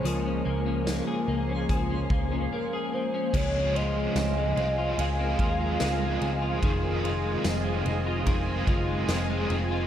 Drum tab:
CC |--------|x-------|--------|
RD |--------|-xxxxxxx|xxxxxxxx|
HH |x-x-x---|--------|--------|
TB |--x-----|--x---x-|--x---x-|
SD |--o-----|--o---o-|--o---o-|
BD |----oo--|o----o--|o---oo--|